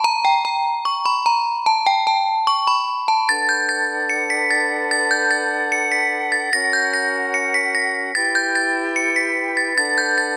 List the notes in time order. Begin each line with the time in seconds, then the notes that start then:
0.04 A#5
0.25 G5
0.45 A#5
0.85 C#6
1.06 B5
1.26 A#5
1.66 A5
1.86 G5
2.07 A5
2.47 C#6
2.67 B5
3.08 A5
3.29 D4 A4 B4 F#5 A6
3.49 G6
3.69 A6
4.09 C#7
4.30 B6
4.51 A6
4.91 A6
5.11 G6
5.31 A6
5.72 C#7
5.92 B6
6.32 A6
6.53 C#4 F#4 A#4 A#6
6.73 G6
6.93 A#6
7.34 C#7
7.54 B6
7.75 A#6
8.15 E4 G4 B4 G5 A6
8.35 G6
8.55 A6
8.96 C#7
9.16 B6
9.57 A6
9.77 D4 A4 F#5 A6
9.98 G6
10.18 A6